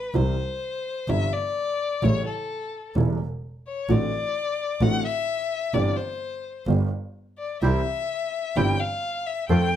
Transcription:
Already playing: B4
0.14 C2 C3 E3 G3 E4 C5
1.08 G1 G2 C3 E3 G3 E4 E5
1.33 D5
2.03 A1 A2 C#3 G3 A3 E4 C#5
2.27 A4
2.96 E1 E2 C#3 G3 A3 E4
3.68 C#5
3.89 A1 A2 D3 A3 C4 F#4 D5
4.81 A1 A2 D3 A3 C4 F#4 F#5
5.04 E5
5.74 G1 G2 E3 G3 C4 G4 D5
5.96 C5
6.67 G1 G2 D3 G3 B3 G4
7.38 D5
7.62 C2 C3 E3 G3 C4 E4 G4 E5
8.56 G1 G2 E3 G3 C4 E4 G4 G5
8.80 F5
9.26 E5
9.49 F2 F3 A3 C4 F4 A4 G5

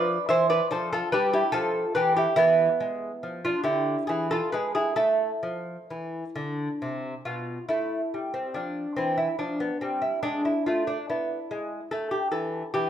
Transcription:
Already playing: F3 B4 D5
0.29 E3 C5 E5
0.50 B4 D5
0.71 F3 A4 C5
0.93 F4 A4
1.12 G3 G4 B4
1.33 E4 G4
1.52 F3 F4 A4
1.95 E3 G4 B4
2.16 E4 G4
2.36 E3 B3 E4
2.80 G#3
3.23 F3
3.45 D4 F4
3.64 D3 E4 G4
4.07 E3 E4 G#4
4.31 F4 A4
4.52 G#3 G#4 B4
4.75 E4 G#4
4.96 A3 E4 A4
5.43 F3
5.90 E3
6.36 D3
6.82 C3
7.25 B2 F4
7.69 A3 E4
8.14 G3
8.34 C4
8.54 F3 D4
8.96 E3 C4
9.18 E4
9.39 F3 D4
9.60 B3
9.81 G3 C4
10.02 E4
10.23 G#3 D4
10.45 E4
10.66 A3 F4
10.87 D4
11.10 B3 E4
11.51 G#3
11.91 A3 A4
12.11 G4
12.32 E3 A4
12.74 E3 G4

